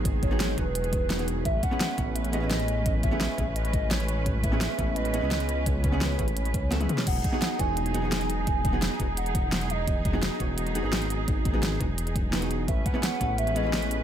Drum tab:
CC |----------------|----------------|----------------|----------------|
HH |x-x-x-x-xxx-xxx-|x-x-x-x-xxx-xxx-|x-x-x-x-xxx-xxx-|x-x-x-x-xxx-xxx-|
SD |----o-------o---|----o-------o---|----o-------o---|----o-------o---|
T1 |----------------|----------------|----------------|----------------|
T2 |----------------|----------------|----------------|----------------|
BD |o-o---o---o-----|o-o---o---------|o-o---o---o-----|o-o---o---------|

CC |----------------|x---------------|----------------|----------------|
HH |x-x-x-xxxxx-xxx-|x-x-x-x-xxx-xxx-|x-x-x-x-xxx-xxx-|x-x-x-x-xxx-xxx-|
SD |----o-------o--o|----o-------o---|----o-------o---|----o-------o---|
T1 |-------------o--|----------------|----------------|----------------|
T2 |--------------o-|----------------|----------------|----------------|
BD |o-o---o---o-----|o-o---o---------|o-o---o---o-----|o-o---o---------|

CC |----------------|----------------|
HH |x-x-x-x-xxx-xxx-|x-x-x-x-xxx-xxx-|
SD |----o-------o---|----o-------o---|
T1 |----------------|----------------|
T2 |----------------|----------------|
BD |o-o---o---o-----|o-o---o---------|